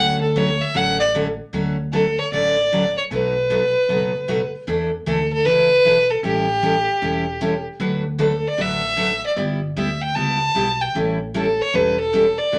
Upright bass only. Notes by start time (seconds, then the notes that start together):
Already playing: D2
0.75 A1
1.53 D2
2.32 A1
3.11 B1
3.89 F#1
4.68 E2
5.07 D2
5.46 C#2
5.85 B1
6.23 A1
7.02 E1
7.80 D2
8.58 A1
9.37 G1
9.77 D2
10.16 C#2
10.56 B1
10.95 A1
11.75 E1
12.53 D2